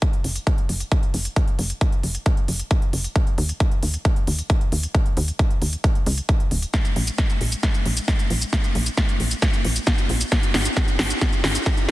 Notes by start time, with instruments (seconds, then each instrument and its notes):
0.02 kick, closed hi-hat
0.13 closed hi-hat
0.24 analog synth bass F#1, open hi-hat
0.36 closed hi-hat
0.47 kick, closed hi-hat
0.58 closed hi-hat
0.69 analog synth bass F#1, open hi-hat
0.80 closed hi-hat
0.92 kick, closed hi-hat
1.03 closed hi-hat
1.14 analog synth bass F#1, open hi-hat
1.25 closed hi-hat
1.36 kick, closed hi-hat
1.48 closed hi-hat
1.59 analog synth bass F#1, open hi-hat
1.70 closed hi-hat
1.81 kick, closed hi-hat
1.92 closed hi-hat
2.03 analog synth bass F#1, open hi-hat
2.15 closed hi-hat
2.26 kick, closed hi-hat
2.37 closed hi-hat
2.48 analog synth bass F#1, open hi-hat
2.59 closed hi-hat
2.71 kick, closed hi-hat
2.82 closed hi-hat
2.93 analog synth bass F#1, open hi-hat
3.04 closed hi-hat
3.16 kick, closed hi-hat
3.27 closed hi-hat
3.38 analog synth bass D#2, open hi-hat
3.49 closed hi-hat
3.60 kick, closed hi-hat
3.71 closed hi-hat
3.83 analog synth bass D#2, open hi-hat
3.94 closed hi-hat
4.05 kick, closed hi-hat
4.16 closed hi-hat
4.27 analog synth bass D#2, open hi-hat
4.39 closed hi-hat
4.50 kick, closed hi-hat
4.61 closed hi-hat
4.72 analog synth bass D#2, open hi-hat
4.83 closed hi-hat
4.95 kick, closed hi-hat
5.06 closed hi-hat
5.17 analog synth bass D#2, open hi-hat
5.28 closed hi-hat
5.39 kick, closed hi-hat
5.50 closed hi-hat
5.62 analog synth bass D#2, open hi-hat
5.73 closed hi-hat
5.84 kick, closed hi-hat
5.95 closed hi-hat
6.06 analog synth bass C#2, open hi-hat
6.18 closed hi-hat
6.29 kick, closed hi-hat
6.40 closed hi-hat
6.51 analog synth bass D#1, open hi-hat
6.62 closed hi-hat
6.74 kick, snare, closed hi-hat, shaker
6.85 closed hi-hat, shaker
6.96 analog synth bass A#1, open hi-hat
7.07 closed hi-hat, shaker
7.18 kick, snare, closed hi-hat, shaker
7.30 closed hi-hat, shaker
7.41 analog synth bass A#1, open hi-hat
7.52 closed hi-hat, shaker
7.63 kick, snare, closed hi-hat, shaker
7.74 closed hi-hat, shaker
7.86 analog synth bass A#1, open hi-hat
7.97 closed hi-hat, shaker
8.08 kick, snare, closed hi-hat, shaker
8.19 closed hi-hat, shaker
8.30 analog synth bass A#1, open hi-hat
8.42 closed hi-hat, shaker
8.53 kick, snare, closed hi-hat, shaker
8.64 closed hi-hat, shaker
8.75 analog synth bass A#1, open hi-hat
8.86 closed hi-hat, shaker
8.97 kick, snare, closed hi-hat, shaker
9.09 closed hi-hat, shaker
9.20 analog synth bass A#1, open hi-hat
9.31 closed hi-hat, shaker
9.42 kick, snare, closed hi-hat, shaker
9.53 closed hi-hat, shaker
9.65 analog synth bass A#1, open hi-hat
9.76 closed hi-hat, shaker
9.87 kick, snare, closed hi-hat, shaker
9.98 closed hi-hat, shaker
10.09 analog synth bass A#1, open hi-hat
10.21 closed hi-hat, shaker
10.32 kick, snare, closed hi-hat, shaker
10.43 closed hi-hat, shaker
10.54 analog synth bass G#1, snare, open hi-hat
10.65 closed hi-hat, shaker
10.77 kick, snare, closed hi-hat, shaker
10.88 closed hi-hat, shaker
10.99 analog synth bass G#1, snare, open hi-hat
11.10 closed hi-hat, shaker
11.21 kick, snare, closed hi-hat, shaker
11.33 closed hi-hat, shaker
11.44 analog synth bass G#1, snare, open hi-hat
11.55 closed hi-hat, shaker
11.66 kick, snare, closed hi-hat, shaker
11.77 closed hi-hat, shaker